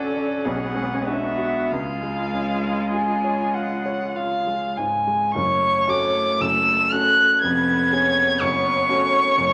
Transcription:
Already playing: D2 A3 C#4 D4 F#4 A4 D5 F#5
0.16 D5
0.44 B1 B3 G#4 F#5
0.55 C#4
0.64 B3
0.74 G#3 C#4
0.83 B3
0.94 C#4
1.02 B3
1.07 D4 F#4 E5
1.13 C#4
1.22 B3
1.38 F#4
1.70 C#2 G#3 F4 F5
2.03 G#3
2.34 C#4
2.65 F4
2.92 G#4 G#5
3.24 C#5
3.54 F5 F#5
3.86 C#5
4.16 F4 F5
4.47 G#3
4.77 G#2 G#5
5.07 G#3
5.34 F#1 F#2 A3 C#5 C#6
5.87 A3 C#4 F#4 D6
6.40 F#1 F#2 A4 E6
6.92 A3 C#4 F#4 F#6
7.41 F1 F2 B3 B4 G#6
7.92 B3 C#4 G#4 C#5
8.40 F#1 F#2 C#5 C#6
8.89 A3 C#4 F#4
9.37 F#1 F#2 A3

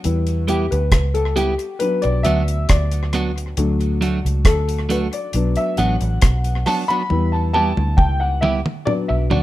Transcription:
0.04 E2 G3 B3 E4, closed hi-hat
0.27 closed hi-hat
0.48 G3 B3 E4 G4, closed hi-hat
0.71 D2 B4, closed hi-hat
0.92 C#2, kick, cross-stick, closed hi-hat
1.14 A4, closed hi-hat
1.36 G3 B3 E4 G4, closed hi-hat
1.59 closed hi-hat
1.79 F#3 B3 D4 B4, closed hi-hat
2.02 B1 D5, muted clean electric guitar stroke, closed hi-hat
2.23 D2 F#3 B3 D4 F#4 E5, closed hi-hat
2.48 closed hi-hat
2.69 D2 D5, kick, cross-stick, closed hi-hat
2.92 closed hi-hat
3.13 F#3 B3 D4 F#4, cross-stick, closed hi-hat
3.38 closed hi-hat
3.57 D2 F#3 A3 D4, closed hi-hat
3.81 closed hi-hat
4.01 F#3 A3 D4 F#4, closed hi-hat
4.25 C#2, closed hi-hat
4.45 D2 A4, kick, cross-stick, closed hi-hat
4.69 closed hi-hat
4.89 F#3 A3 D4 F#4 B4, closed hi-hat
5.13 D5, closed hi-hat
5.33 B1 F#3 B3 D4, closed hi-hat
5.56 E5, closed hi-hat
5.77 A1 F#3 B3 D4 F#4 F#5, closed hi-hat
6.01 A1, muted clean electric guitar stroke, closed hi-hat
6.22 B1, kick, cross-stick, closed hi-hat
6.44 closed hi-hat
6.66 F#3 B3 D4 F#4 A5, cross-stick, open hi-hat
6.88 F#3 B3 D4 F#4 B5, closed hi-hat
7.10 E2 G3 B3 E4, high tom
7.32 A5
7.53 G3 B3 E4 G4 A5, high tom
7.77 D2, high tom
7.97 C#2 G5, kick, mid tom
8.20 F#5
8.41 G3 B3 E4 G4 E5, mid tom
8.66 mid tom
8.85 F#3 B3 D4 D5, mid tom
9.08 B1 E5, muted clean electric guitar stroke
9.30 D2 F#3 B3 D4 F#4 D5, mid tom

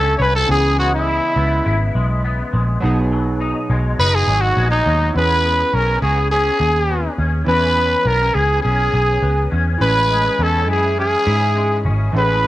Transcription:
Already playing: C#2 D3 F#3 A3 C#4 D4 F#4 A4
0.18 C2 A3 B4 C#5
0.36 A4
0.46 C#2 C#3 E3 B3 C#4
0.51 G#4
0.78 G#3 F#4
0.95 E4
1.07 E4
1.36 C#2 B3
1.66 G#1 E4
1.95 B1 G#3
2.24 B3
2.53 A#1 G#3
2.81 B1 B2 F#3 B3 D#4
2.85 G#4
3.12 F#3
3.40 D#4
3.70 B1 G#3
3.99 F#1 D#4 B4
4.15 G#4
4.27 G#1 F#3
4.41 F#4
4.57 A#1 G#3
4.71 D#4
4.86 D#2 F#3
5.13 E2 B3 C#4 E4
5.17 G#4 B4
5.45 B3
5.73 B1 C#4 A#4
6.02 C#2 F#4 G#4
6.17 G#4
6.31 C#4 G#4
6.60 D#2 G#4
6.90 B3
7.18 D#2 C#4
7.45 E2 E3 B3 C#4 B4
7.49 B4
7.77 B3
8.05 B1 B3 A#4
8.22 C#4
8.34 C#2 G#4
8.63 B1 C#4 G#4
8.94 B1 G#4
9.22 C#2 B3
9.51 E2 C#4
9.78 A1 E3 G#3 C#4
9.82 G#4 B4
10.11 G#3
10.39 E2 C#4 A4
10.68 F#2 E4 G#4
10.98 C#4 G#4
11.26 G#2 E4
11.55 G#3
11.85 G#1 C#4
12.12 A1 A2 E3 A3 C#4
12.17 G#4 B4
12.44 G#3

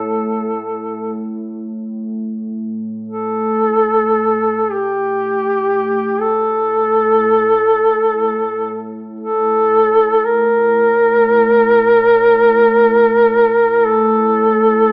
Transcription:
Already playing: A2 A4
3.08 A4
4.37 A2
4.72 G4
6.21 A4
9.21 A4
10.26 A#4
13.86 A4

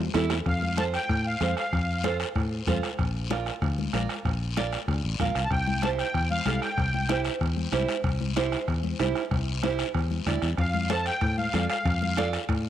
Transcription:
0.14 E2 E4 G4 A4, bombo rim, cowbell, high conga, low timbale, short guiro
0.30 bombo rim, low timbale, short guiro
0.46 F2 F5, bombo low, bombo rim, high conga, long guiro
0.62 high conga
0.77 F4 A4 C5 A5, bombo rim, high conga, short guiro
0.94 G5, bombo rim, short guiro
1.09 A2, bombo low, bombo rim, high conga, long guiro
1.27 F5
1.41 F2 F4 A4 C5, bombo rim, high conga, short guiro
1.57 F5, bombo rim, short guiro
1.73 F2, bombo low, bombo rim, high conga, long guiro
2.04 F4 A4 C5, bombo rim, high conga, short guiro
2.20 bombo rim, short guiro
2.35 A2, bombo low, bombo rim, high conga, long guiro
2.67 F2 F4 A4 C5, bombo low, bombo rim, high conga, short guiro
2.83 bombo rim, short guiro
2.99 A#1, bombo low, bombo rim, high conga, long guiro
3.30 F4 A#4 D5, bombo rim, high conga, short guiro
3.46 bombo rim, short guiro
3.62 D2, bombo low, bombo rim, high conga, long guiro
3.78 high conga
3.93 A#1 F4 A#4 D5, bombo rim, high conga, short guiro
4.09 bombo rim, short guiro
4.25 A#1, bombo low, bombo rim, high conga, long guiro
4.57 F4 A#4 D5, bombo rim, high conga, short guiro
4.72 bombo rim, short guiro
4.88 D2, bombo low, bombo rim, high conga, long guiro
5.04 A1
5.19 A#1 F4 A#4 F5, bombo low, bombo rim, high conga, short guiro
5.35 C2, bombo rim, short guiro
5.44 A5
5.51 C2 G5, bombo low, bombo rim, high conga, long guiro
5.67 high conga
5.82 E4 G4 C5 A5, bombo rim, high conga, short guiro
5.99 G5, bombo rim, short guiro
6.14 E2, bombo low, bombo rim, high conga, long guiro
6.31 F5, high conga
6.45 C2 E4 G4 A4, bombo rim, high conga, short guiro
6.61 G5, bombo rim, short guiro
6.77 C2, bombo low, bombo rim, high conga, long guiro
6.94 high conga
7.09 E4 G4 C5, bombo rim, high conga, short guiro
7.25 bombo rim, short guiro
7.41 E2, bombo low, bombo rim, high conga, long guiro
7.57 high conga
7.72 C2 E4 G4 C5, bombo rim, high conga, short guiro
7.88 bombo rim, short guiro
8.04 C2, bombo low, bombo rim, high conga, long guiro
8.21 high conga
8.36 E4 G4 C5, bombo rim, high conga, short guiro
8.52 bombo rim, short guiro
8.68 E2, bombo low, bombo rim, high conga, long guiro
8.84 high conga
8.99 C2 E4 G4 C5, bombo rim, high conga, short guiro
9.15 bombo rim, short guiro
9.31 C2, bombo low, bombo rim, high conga, long guiro
9.63 E4 G4 C5, bombo rim, high conga, short guiro
9.79 bombo rim, short guiro
9.95 E2, bombo low, bombo rim, high conga, long guiro
10.11 high conga
10.26 D2 E4 G4 D5, bombo low, bombo rim, high conga, short guiro
10.42 E2, bombo rim, short guiro
10.58 F2 F5, bombo low, bombo rim, high conga, high timbale, long guiro
10.74 high conga
10.90 F4 A4 C5 A5, bombo rim, high conga, high timbale, short guiro
11.06 G5, bombo rim, high timbale, short guiro
11.21 A2, bombo low, bombo rim, high conga, high timbale, long guiro
11.38 F5, high conga
11.53 F2 F4 A4 D5, bombo rim, high conga, high timbale, low timbale, short guiro
11.70 F5, bombo rim, high timbale, short guiro
11.85 F2, bombo low, bombo rim, high conga, high timbale, long guiro
12.02 high conga
12.17 F4 A4 D5, bombo rim, high conga, high timbale, short guiro
12.33 bombo rim, high timbale, short guiro
12.49 A2, bombo low, bombo rim, high conga, high timbale, long guiro

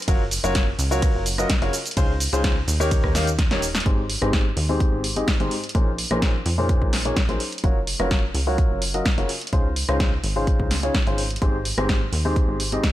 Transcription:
0.02 closed hi-hat
0.08 F#1 F#3 C#4 F4 F#4 A#4 C#5, kick, closed hi-hat, ride, shaker
0.31 open hi-hat, shaker
0.44 F#1 F#3 C#4 F4 F#4 A#4 C#5, closed hi-hat, shaker
0.55 kick, snare, closed hi-hat, ride, shaker
0.79 C#2, open hi-hat, shaker
0.91 F#3 C#4 F4 F#4 A#4 C#5, shaker
1.02 kick, cross-stick, closed hi-hat, ride, shaker
1.15 F#1
1.26 open hi-hat, shaker
1.38 F#3 C#4 F4 F#4 A#4 D#5, cross-stick, closed hi-hat, shaker
1.50 kick, snare, closed hi-hat, ride, shaker
1.62 F#1 C#3 C#4 F4 F#4 A#4 C#5, closed hi-hat
1.73 open hi-hat, shaker
1.86 closed hi-hat, shaker
1.91 closed hi-hat
1.97 C#2 C#3 C#4 D#4 F4 G#4 C5, kick, closed hi-hat, ride, shaker
2.20 open hi-hat, shaker
2.33 C#2 C#3 C#4 D#4 F4 G#4 C5, closed hi-hat, shaker
2.44 kick, snare, closed hi-hat, ride, shaker
2.68 D#2, open hi-hat, shaker
2.80 D#3 C#4 D#4 G4 A#4 C#5, shaker
2.91 kick, closed hi-hat, ride, shaker
3.04 D#2, kick, cross-stick
3.15 D#3 C#4 D#4 G4 A#4 F5, snare, open hi-hat, shaker
3.27 closed hi-hat, shaker
3.39 kick, snare, closed hi-hat, ride, shaker
3.51 D#1 D#3 C#4 D#4 G4 A#4 C#5, snare, closed hi-hat
3.62 open hi-hat, shaker
3.75 snare, closed hi-hat, shaker
3.80 closed hi-hat
3.86 G#1 G#2 C4 D#4 G4 G#4 C5, kick, closed hi-hat
4.10 open hi-hat
4.22 G#1 G#2 C4 D#4 G4 G#4 C5, cross-stick, closed hi-hat
4.33 kick, snare, closed hi-hat
4.57 D#2, open hi-hat
4.69 G#2 C4 D#4 G4 G#4 C5
4.80 kick, closed hi-hat
4.93 G#1
5.04 open hi-hat
5.16 G#2 C4 D#4 G4 G#4 D#5, closed hi-hat
5.28 kick, snare, closed hi-hat
5.40 G#1 G#2 C4 D#4 G4 G#4 C5, closed hi-hat
5.51 open hi-hat
5.64 closed hi-hat
5.69 closed hi-hat
5.75 A#1 A#2 C#4 D#4 G#4 A#4 C5, kick, closed hi-hat
5.98 open hi-hat
6.11 A#1 A#2 C#4 D#4 G#4 A#4 C5, cross-stick, closed hi-hat
6.22 kick, snare, closed hi-hat
6.46 F2, open hi-hat
6.58 A#2 C#4 D#4 G#4 A#4 C5
6.69 kick, closed hi-hat
6.82 A#1, kick
6.93 snare, open hi-hat
7.05 A#2 C#4 D#4 G#4 A#4 C#5, closed hi-hat
7.16 kick, snare, closed hi-hat
7.29 A#1 F#3 C#4 D#4 G#4 A#4 C5, closed hi-hat
7.40 open hi-hat
7.52 closed hi-hat
7.58 closed hi-hat
7.64 F#1 F#3 C#4 F4 F#4 A#4 C#5, kick, closed hi-hat
7.87 open hi-hat
8.00 F#1 F#3 C#4 F4 F#4 A#4 C#5, cross-stick, closed hi-hat
8.11 kick, snare, closed hi-hat
8.35 C#2, open hi-hat
8.47 F#3 C#4 F4 F#4 A#4 C#5
8.58 kick, closed hi-hat
8.71 F#1
8.82 open hi-hat
8.94 F#3 C#4 F4 F#4 A#4 D#5, closed hi-hat
9.05 kick, snare, closed hi-hat
9.18 F#1 C#3 C#4 F4 F#4 A#4 C#5, closed hi-hat
9.29 open hi-hat
9.41 closed hi-hat
9.47 closed hi-hat
9.53 C#2 C#3 C#4 D#4 F4 G#4 C5, kick, closed hi-hat
9.76 open hi-hat
9.89 C#2 C#3 C#4 D#4 F4 G#4 C5, cross-stick, closed hi-hat
10.00 kick, snare, closed hi-hat
10.24 G#1, open hi-hat
10.36 C#3 C#4 D#4 F4 G#4 C5
10.47 kick, closed hi-hat
10.60 C#2, kick
10.71 snare, open hi-hat
10.83 C#3 C#4 D#4 F4 G#4 C#5, closed hi-hat
10.94 kick, snare, closed hi-hat
11.07 G#1 C#3 C#4 D#4 F4 G#4 C5, closed hi-hat
11.18 open hi-hat
11.30 closed hi-hat
11.36 closed hi-hat
11.42 G#1 G#2 C4 D#4 G4 G#4 C5, kick, closed hi-hat
11.65 open hi-hat
11.78 G#1 G#2 C4 D#4 G4 G#4 C5, cross-stick, closed hi-hat
11.89 kick, snare, closed hi-hat
12.13 D#2, open hi-hat
12.25 G#2 C4 D#4 G4 G#4 C5
12.36 kick, closed hi-hat
12.49 G#1
12.60 open hi-hat
12.72 G#2 C4 D#4 G4 G#4 D#5, closed hi-hat
12.84 kick, snare, closed hi-hat

